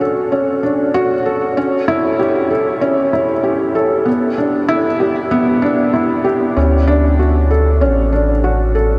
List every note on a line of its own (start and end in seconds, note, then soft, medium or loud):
0.00 0.32 C#4 loud
0.00 0.63 D4 loud
0.00 0.94 F#4 medium
0.00 1.26 A4 medium
0.32 0.61 C#4 medium
0.63 0.93 D4 medium
0.94 1.12 F#4 loud
1.26 1.55 A4 medium
1.57 1.87 C#4 medium
1.88 2.18 E4 loud
2.19 2.49 G4 medium
2.51 2.80 A4 medium
2.81 3.11 C#4 loud
3.13 3.31 E4 medium
3.43 3.74 G4 medium
3.75 4.05 A4 medium
4.05 4.36 B3 medium
4.38 4.68 D4 medium
4.69 4.87 E4 loud
5.00 5.30 G4 medium
5.31 5.61 B3 loud
5.62 5.92 D4 loud
5.94 6.24 E4 medium
6.24 6.55 G4 medium
6.57 7.83 D2 loud
6.57 6.86 C#4 medium
6.87 7.17 D4 loud
7.19 7.49 F#4 medium
7.51 7.80 A4 medium
7.81 8.99 A1 medium
7.81 8.11 C#4 medium
8.13 8.31 D4 medium
8.44 8.74 F#4 medium
8.75 8.99 A4 medium